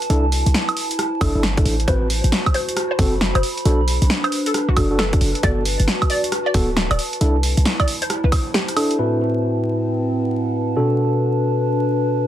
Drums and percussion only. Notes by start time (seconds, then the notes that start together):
0.02 closed hi-hat
0.10 closed hi-hat
0.32 open hi-hat
0.46 closed hi-hat
0.54 snare
0.69 closed hi-hat, high woodblock
0.77 open hi-hat
0.91 closed hi-hat
0.99 cross-stick, closed hi-hat
1.21 kick, open hi-hat, high woodblock
1.43 snare
1.57 kick, cross-stick, closed hi-hat
1.66 open hi-hat
1.80 closed hi-hat
1.88 kick, closed hi-hat
2.10 open hi-hat
2.24 closed hi-hat
2.32 snare
2.46 kick, closed hi-hat, high woodblock
2.54 open hi-hat
2.69 closed hi-hat
2.77 cross-stick, closed hi-hat
2.99 kick, open hi-hat
3.21 snare
3.35 cross-stick, closed hi-hat, high woodblock
3.43 open hi-hat
3.57 closed hi-hat
3.65 closed hi-hat
3.88 open hi-hat
4.02 closed hi-hat
4.10 snare
4.24 closed hi-hat, high woodblock
4.32 open hi-hat
4.46 closed hi-hat
4.54 cross-stick, closed hi-hat
4.77 kick, open hi-hat, high woodblock
4.99 snare
5.13 kick, cross-stick, closed hi-hat
5.21 open hi-hat
5.35 closed hi-hat
5.43 kick, closed hi-hat
5.65 open hi-hat
5.80 closed hi-hat
5.88 snare
6.02 kick, closed hi-hat, high woodblock
6.10 open hi-hat
6.24 closed hi-hat
6.32 cross-stick, closed hi-hat
6.54 kick, open hi-hat
6.77 snare
6.91 cross-stick, closed hi-hat, high woodblock
6.99 open hi-hat
7.13 closed hi-hat
7.21 closed hi-hat
7.43 open hi-hat
7.57 closed hi-hat
7.65 snare
7.80 kick, closed hi-hat, high woodblock
7.88 open hi-hat
8.02 closed hi-hat
8.10 cross-stick, closed hi-hat
8.32 kick, open hi-hat, high woodblock
8.54 snare
8.68 cross-stick, closed hi-hat
8.77 open hi-hat, high woodblock
8.91 closed hi-hat